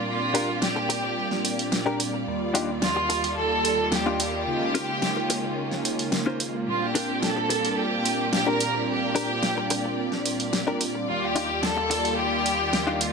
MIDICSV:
0, 0, Header, 1, 7, 480
1, 0, Start_track
1, 0, Key_signature, -2, "major"
1, 0, Tempo, 550459
1, 65, Time_signature, 4, 2, 24, 8
1, 11446, End_track
2, 0, Start_track
2, 0, Title_t, "Violin section"
2, 0, Program_c, 0, 48
2, 71, Note_on_c, 0, 65, 91
2, 514, Note_off_c, 0, 65, 0
2, 551, Note_on_c, 0, 67, 84
2, 1508, Note_off_c, 0, 67, 0
2, 2468, Note_on_c, 0, 65, 92
2, 2913, Note_off_c, 0, 65, 0
2, 2951, Note_on_c, 0, 69, 112
2, 3428, Note_off_c, 0, 69, 0
2, 3429, Note_on_c, 0, 67, 94
2, 3662, Note_off_c, 0, 67, 0
2, 3672, Note_on_c, 0, 67, 100
2, 5073, Note_off_c, 0, 67, 0
2, 5826, Note_on_c, 0, 65, 84
2, 5940, Note_off_c, 0, 65, 0
2, 5948, Note_on_c, 0, 67, 84
2, 6301, Note_on_c, 0, 69, 96
2, 6304, Note_off_c, 0, 67, 0
2, 6782, Note_on_c, 0, 67, 96
2, 6783, Note_off_c, 0, 69, 0
2, 7253, Note_off_c, 0, 67, 0
2, 7263, Note_on_c, 0, 67, 90
2, 7379, Note_off_c, 0, 67, 0
2, 7387, Note_on_c, 0, 70, 98
2, 7719, Note_off_c, 0, 70, 0
2, 7745, Note_on_c, 0, 67, 100
2, 8670, Note_off_c, 0, 67, 0
2, 9663, Note_on_c, 0, 65, 88
2, 9779, Note_off_c, 0, 65, 0
2, 9784, Note_on_c, 0, 67, 94
2, 10137, Note_on_c, 0, 69, 103
2, 10142, Note_off_c, 0, 67, 0
2, 10617, Note_on_c, 0, 67, 105
2, 10621, Note_off_c, 0, 69, 0
2, 11273, Note_off_c, 0, 67, 0
2, 11283, Note_on_c, 0, 67, 57
2, 11338, Note_on_c, 0, 65, 91
2, 11343, Note_off_c, 0, 67, 0
2, 11446, Note_off_c, 0, 65, 0
2, 11446, End_track
3, 0, Start_track
3, 0, Title_t, "Clean electric guitar"
3, 0, Program_c, 1, 27
3, 296, Note_on_c, 1, 62, 106
3, 298, Note_on_c, 1, 67, 104
3, 305, Note_on_c, 1, 70, 107
3, 424, Note_off_c, 1, 62, 0
3, 426, Note_off_c, 1, 67, 0
3, 427, Note_off_c, 1, 70, 0
3, 1619, Note_on_c, 1, 62, 81
3, 1621, Note_on_c, 1, 67, 76
3, 1626, Note_on_c, 1, 70, 83
3, 1740, Note_off_c, 1, 62, 0
3, 1741, Note_off_c, 1, 67, 0
3, 1742, Note_off_c, 1, 70, 0
3, 2215, Note_on_c, 1, 62, 106
3, 2220, Note_on_c, 1, 63, 94
3, 2220, Note_on_c, 1, 65, 96
3, 2224, Note_on_c, 1, 67, 107
3, 2344, Note_off_c, 1, 62, 0
3, 2345, Note_off_c, 1, 63, 0
3, 2346, Note_off_c, 1, 65, 0
3, 2347, Note_off_c, 1, 67, 0
3, 3539, Note_on_c, 1, 62, 68
3, 3543, Note_on_c, 1, 65, 78
3, 3546, Note_on_c, 1, 63, 62
3, 3550, Note_on_c, 1, 67, 85
3, 3660, Note_off_c, 1, 62, 0
3, 3662, Note_off_c, 1, 63, 0
3, 3662, Note_off_c, 1, 65, 0
3, 3664, Note_off_c, 1, 67, 0
3, 4137, Note_on_c, 1, 61, 103
3, 4141, Note_on_c, 1, 65, 103
3, 4143, Note_on_c, 1, 63, 85
3, 4144, Note_on_c, 1, 70, 98
3, 4265, Note_off_c, 1, 61, 0
3, 4266, Note_off_c, 1, 63, 0
3, 4267, Note_off_c, 1, 65, 0
3, 4267, Note_off_c, 1, 70, 0
3, 5460, Note_on_c, 1, 61, 77
3, 5464, Note_on_c, 1, 65, 77
3, 5466, Note_on_c, 1, 63, 64
3, 5470, Note_on_c, 1, 72, 78
3, 5581, Note_off_c, 1, 61, 0
3, 5582, Note_off_c, 1, 63, 0
3, 5583, Note_off_c, 1, 65, 0
3, 5584, Note_off_c, 1, 72, 0
3, 6059, Note_on_c, 1, 62, 113
3, 6065, Note_on_c, 1, 67, 87
3, 6066, Note_on_c, 1, 70, 113
3, 6186, Note_off_c, 1, 62, 0
3, 6187, Note_off_c, 1, 67, 0
3, 6189, Note_off_c, 1, 70, 0
3, 7381, Note_on_c, 1, 62, 85
3, 7384, Note_on_c, 1, 67, 78
3, 7390, Note_on_c, 1, 70, 80
3, 7501, Note_off_c, 1, 62, 0
3, 7503, Note_off_c, 1, 67, 0
3, 7504, Note_off_c, 1, 70, 0
3, 7977, Note_on_c, 1, 62, 105
3, 7982, Note_on_c, 1, 67, 95
3, 7983, Note_on_c, 1, 70, 123
3, 8105, Note_off_c, 1, 62, 0
3, 8106, Note_off_c, 1, 67, 0
3, 8107, Note_off_c, 1, 70, 0
3, 9303, Note_on_c, 1, 62, 81
3, 9310, Note_on_c, 1, 67, 65
3, 9310, Note_on_c, 1, 70, 90
3, 9422, Note_off_c, 1, 62, 0
3, 9424, Note_off_c, 1, 67, 0
3, 9425, Note_off_c, 1, 70, 0
3, 9900, Note_on_c, 1, 62, 103
3, 9904, Note_on_c, 1, 65, 106
3, 9906, Note_on_c, 1, 63, 93
3, 9909, Note_on_c, 1, 67, 100
3, 10026, Note_off_c, 1, 62, 0
3, 10028, Note_off_c, 1, 63, 0
3, 10028, Note_off_c, 1, 65, 0
3, 10029, Note_off_c, 1, 67, 0
3, 11220, Note_on_c, 1, 62, 78
3, 11224, Note_on_c, 1, 65, 80
3, 11226, Note_on_c, 1, 63, 65
3, 11229, Note_on_c, 1, 67, 81
3, 11341, Note_off_c, 1, 62, 0
3, 11342, Note_off_c, 1, 63, 0
3, 11343, Note_off_c, 1, 65, 0
3, 11344, Note_off_c, 1, 67, 0
3, 11446, End_track
4, 0, Start_track
4, 0, Title_t, "String section"
4, 0, Program_c, 2, 48
4, 0, Note_on_c, 2, 58, 68
4, 0, Note_on_c, 2, 67, 58
4, 0, Note_on_c, 2, 74, 73
4, 1947, Note_off_c, 2, 67, 0
4, 1949, Note_off_c, 2, 58, 0
4, 1981, Note_on_c, 2, 51, 62
4, 1981, Note_on_c, 2, 55, 67
4, 1982, Note_on_c, 2, 65, 64
4, 3868, Note_off_c, 2, 74, 0
4, 3883, Note_off_c, 2, 55, 0
4, 3902, Note_on_c, 2, 61, 77
4, 3903, Note_on_c, 2, 58, 69
4, 5788, Note_off_c, 2, 51, 0
4, 5788, Note_off_c, 2, 65, 0
4, 5804, Note_off_c, 2, 61, 0
4, 5823, Note_on_c, 2, 74, 72
4, 5825, Note_on_c, 2, 67, 62
4, 9629, Note_off_c, 2, 58, 0
4, 9630, Note_off_c, 2, 67, 0
4, 9665, Note_on_c, 2, 51, 63
4, 9665, Note_on_c, 2, 55, 67
4, 9667, Note_on_c, 2, 65, 66
4, 11446, Note_off_c, 2, 51, 0
4, 11446, Note_off_c, 2, 55, 0
4, 11446, Note_off_c, 2, 65, 0
4, 11446, Note_off_c, 2, 74, 0
4, 11446, End_track
5, 0, Start_track
5, 0, Title_t, "Analog polysynth"
5, 0, Program_c, 3, 90
5, 0, Note_on_c, 3, 46, 72
5, 0, Note_on_c, 3, 55, 67
5, 0, Note_on_c, 3, 60, 68
5, 0, Note_on_c, 3, 62, 68
5, 0, Note_on_c, 3, 65, 81
5, 1951, Note_off_c, 3, 46, 0
5, 1954, Note_off_c, 3, 55, 0
5, 1956, Note_off_c, 3, 60, 0
5, 1958, Note_off_c, 3, 62, 0
5, 1960, Note_off_c, 3, 65, 0
5, 1973, Note_on_c, 3, 39, 75
5, 1978, Note_on_c, 3, 55, 69
5, 1982, Note_on_c, 3, 58, 66
5, 1986, Note_on_c, 3, 74, 69
5, 1991, Note_on_c, 3, 65, 81
5, 3871, Note_off_c, 3, 39, 0
5, 3873, Note_off_c, 3, 55, 0
5, 3875, Note_off_c, 3, 58, 0
5, 3877, Note_off_c, 3, 74, 0
5, 3880, Note_off_c, 3, 65, 0
5, 3895, Note_on_c, 3, 49, 77
5, 3899, Note_on_c, 3, 56, 69
5, 3902, Note_on_c, 3, 58, 67
5, 3908, Note_on_c, 3, 63, 67
5, 3912, Note_on_c, 3, 65, 82
5, 5792, Note_off_c, 3, 49, 0
5, 5794, Note_off_c, 3, 56, 0
5, 5795, Note_off_c, 3, 58, 0
5, 5798, Note_off_c, 3, 63, 0
5, 5800, Note_off_c, 3, 65, 0
5, 5816, Note_on_c, 3, 46, 72
5, 5819, Note_on_c, 3, 55, 67
5, 5824, Note_on_c, 3, 60, 69
5, 5829, Note_on_c, 3, 62, 68
5, 5833, Note_on_c, 3, 65, 81
5, 9632, Note_off_c, 3, 46, 0
5, 9634, Note_off_c, 3, 55, 0
5, 9636, Note_off_c, 3, 60, 0
5, 9639, Note_off_c, 3, 62, 0
5, 9641, Note_off_c, 3, 65, 0
5, 9657, Note_on_c, 3, 39, 77
5, 9661, Note_on_c, 3, 55, 69
5, 9665, Note_on_c, 3, 58, 70
5, 9670, Note_on_c, 3, 74, 68
5, 9674, Note_on_c, 3, 65, 82
5, 11446, Note_off_c, 3, 39, 0
5, 11446, Note_off_c, 3, 55, 0
5, 11446, Note_off_c, 3, 58, 0
5, 11446, Note_off_c, 3, 65, 0
5, 11446, Note_off_c, 3, 74, 0
5, 11446, End_track
6, 0, Start_track
6, 0, Title_t, "Muted clean electric guitar strokes"
6, 540, Note_on_c, 9, 29, 30
6, 627, Note_off_c, 9, 29, 0
6, 660, Note_on_c, 9, 29, 82
6, 747, Note_off_c, 9, 29, 0
6, 777, Note_on_c, 9, 29, 103
6, 864, Note_off_c, 9, 29, 0
6, 900, Note_on_c, 9, 29, 30
6, 987, Note_off_c, 9, 29, 0
6, 1859, Note_on_c, 9, 29, 30
6, 1947, Note_off_c, 9, 29, 0
6, 2457, Note_on_c, 9, 29, 31
6, 2544, Note_off_c, 9, 29, 0
6, 2581, Note_on_c, 9, 29, 83
6, 2668, Note_off_c, 9, 29, 0
6, 2696, Note_on_c, 9, 29, 106
6, 2783, Note_off_c, 9, 29, 0
6, 2822, Note_on_c, 9, 29, 30
6, 2909, Note_off_c, 9, 29, 0
6, 3782, Note_on_c, 9, 29, 30
6, 3869, Note_off_c, 9, 29, 0
6, 4379, Note_on_c, 9, 29, 32
6, 4466, Note_off_c, 9, 29, 0
6, 4501, Note_on_c, 9, 29, 78
6, 4588, Note_off_c, 9, 29, 0
6, 4618, Note_on_c, 9, 29, 99
6, 4705, Note_off_c, 9, 29, 0
6, 4741, Note_on_c, 9, 29, 30
6, 4828, Note_off_c, 9, 29, 0
6, 5705, Note_on_c, 9, 29, 29
6, 5792, Note_off_c, 9, 29, 0
6, 6299, Note_on_c, 9, 29, 31
6, 6386, Note_off_c, 9, 29, 0
6, 6423, Note_on_c, 9, 29, 78
6, 6510, Note_off_c, 9, 29, 0
6, 6536, Note_on_c, 9, 29, 101
6, 6623, Note_off_c, 9, 29, 0
6, 6663, Note_on_c, 9, 29, 29
6, 6750, Note_off_c, 9, 29, 0
6, 7623, Note_on_c, 9, 29, 30
6, 7710, Note_off_c, 9, 29, 0
6, 8222, Note_on_c, 9, 29, 31
6, 8309, Note_off_c, 9, 29, 0
6, 8345, Note_on_c, 9, 29, 76
6, 8432, Note_off_c, 9, 29, 0
6, 8461, Note_on_c, 9, 29, 109
6, 8548, Note_off_c, 9, 29, 0
6, 8588, Note_on_c, 9, 29, 31
6, 8675, Note_off_c, 9, 29, 0
6, 9545, Note_on_c, 9, 29, 31
6, 9632, Note_off_c, 9, 29, 0
6, 10140, Note_on_c, 9, 29, 31
6, 10227, Note_off_c, 9, 29, 0
6, 10262, Note_on_c, 9, 29, 80
6, 10349, Note_off_c, 9, 29, 0
6, 10376, Note_on_c, 9, 29, 106
6, 10463, Note_off_c, 9, 29, 0
6, 10501, Note_on_c, 9, 29, 31
6, 10588, Note_off_c, 9, 29, 0
6, 11446, End_track
7, 0, Start_track
7, 0, Title_t, "Drums"
7, 303, Note_on_c, 9, 46, 97
7, 390, Note_off_c, 9, 46, 0
7, 540, Note_on_c, 9, 38, 104
7, 627, Note_off_c, 9, 38, 0
7, 783, Note_on_c, 9, 46, 93
7, 871, Note_off_c, 9, 46, 0
7, 1144, Note_on_c, 9, 38, 33
7, 1232, Note_off_c, 9, 38, 0
7, 1262, Note_on_c, 9, 46, 92
7, 1349, Note_off_c, 9, 46, 0
7, 1388, Note_on_c, 9, 46, 56
7, 1475, Note_off_c, 9, 46, 0
7, 1500, Note_on_c, 9, 38, 109
7, 1588, Note_off_c, 9, 38, 0
7, 1743, Note_on_c, 9, 46, 93
7, 1830, Note_off_c, 9, 46, 0
7, 2222, Note_on_c, 9, 46, 99
7, 2309, Note_off_c, 9, 46, 0
7, 2459, Note_on_c, 9, 38, 103
7, 2546, Note_off_c, 9, 38, 0
7, 2701, Note_on_c, 9, 46, 98
7, 2788, Note_off_c, 9, 46, 0
7, 2825, Note_on_c, 9, 46, 58
7, 2912, Note_off_c, 9, 46, 0
7, 3181, Note_on_c, 9, 46, 94
7, 3268, Note_off_c, 9, 46, 0
7, 3417, Note_on_c, 9, 38, 106
7, 3504, Note_off_c, 9, 38, 0
7, 3660, Note_on_c, 9, 46, 97
7, 3748, Note_off_c, 9, 46, 0
7, 4141, Note_on_c, 9, 46, 100
7, 4229, Note_off_c, 9, 46, 0
7, 4378, Note_on_c, 9, 38, 101
7, 4466, Note_off_c, 9, 38, 0
7, 4621, Note_on_c, 9, 46, 99
7, 4708, Note_off_c, 9, 46, 0
7, 4983, Note_on_c, 9, 38, 33
7, 5070, Note_off_c, 9, 38, 0
7, 5102, Note_on_c, 9, 46, 91
7, 5189, Note_off_c, 9, 46, 0
7, 5225, Note_on_c, 9, 46, 57
7, 5312, Note_off_c, 9, 46, 0
7, 5337, Note_on_c, 9, 38, 105
7, 5424, Note_off_c, 9, 38, 0
7, 5582, Note_on_c, 9, 46, 100
7, 5669, Note_off_c, 9, 46, 0
7, 6063, Note_on_c, 9, 46, 93
7, 6150, Note_off_c, 9, 46, 0
7, 6300, Note_on_c, 9, 38, 100
7, 6387, Note_off_c, 9, 38, 0
7, 6543, Note_on_c, 9, 46, 96
7, 6630, Note_off_c, 9, 46, 0
7, 6667, Note_on_c, 9, 46, 55
7, 6755, Note_off_c, 9, 46, 0
7, 7024, Note_on_c, 9, 46, 93
7, 7111, Note_off_c, 9, 46, 0
7, 7261, Note_on_c, 9, 38, 104
7, 7348, Note_off_c, 9, 38, 0
7, 7503, Note_on_c, 9, 46, 93
7, 7591, Note_off_c, 9, 46, 0
7, 7984, Note_on_c, 9, 46, 89
7, 8071, Note_off_c, 9, 46, 0
7, 8219, Note_on_c, 9, 38, 96
7, 8307, Note_off_c, 9, 38, 0
7, 8461, Note_on_c, 9, 46, 93
7, 8548, Note_off_c, 9, 46, 0
7, 8824, Note_on_c, 9, 38, 32
7, 8911, Note_off_c, 9, 38, 0
7, 8943, Note_on_c, 9, 46, 90
7, 9030, Note_off_c, 9, 46, 0
7, 9067, Note_on_c, 9, 46, 55
7, 9155, Note_off_c, 9, 46, 0
7, 9182, Note_on_c, 9, 38, 103
7, 9269, Note_off_c, 9, 38, 0
7, 9424, Note_on_c, 9, 46, 94
7, 9511, Note_off_c, 9, 46, 0
7, 9903, Note_on_c, 9, 46, 89
7, 9991, Note_off_c, 9, 46, 0
7, 10140, Note_on_c, 9, 38, 102
7, 10227, Note_off_c, 9, 38, 0
7, 10384, Note_on_c, 9, 46, 94
7, 10471, Note_off_c, 9, 46, 0
7, 10508, Note_on_c, 9, 46, 52
7, 10595, Note_off_c, 9, 46, 0
7, 10863, Note_on_c, 9, 46, 83
7, 10951, Note_off_c, 9, 46, 0
7, 11101, Note_on_c, 9, 38, 100
7, 11188, Note_off_c, 9, 38, 0
7, 11344, Note_on_c, 9, 46, 87
7, 11431, Note_off_c, 9, 46, 0
7, 11446, End_track
0, 0, End_of_file